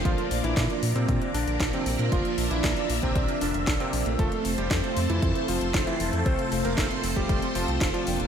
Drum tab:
HH |xxoxxxoxxxoxxxox|xxoxxxoxxxoxxxox|xxoxxxoxxxoxxxox|xxoxxxoxxxoxxxox|
SD |----o-------o---|----o-------o---|----o-------o---|----o-------o---|
BD |o---o---o---o---|o---o--oo---o---|o---o---o---o---|o---o--oo---o---|